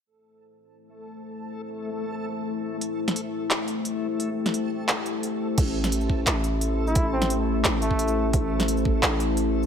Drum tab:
CC |----------------|----------------|----------------|----------------|
HH |----------------|----------------|x--xx---x-x-x---|x--xx---x-x-x---|
SH |----------------|----------------|----------------|----------------|
CP |----------------|----------------|--------x-------|--------x-------|
SD |----------------|----------------|---o------------|---o------------|
BD |----------------|----------------|----------------|----------------|

CC |x---------------|----------------|----------------|
HH |x--xx---x-x-x---|x--xx---x-x-x---|x--xx---x-x-x---|
SH |-----x---------x|-------------x--|-----x---------x|
CP |--------x-------|--------x-------|--------x-------|
SD |---o------------|---o------------|---o------------|
BD |o-----o---------|o----------o----|o-----o---------|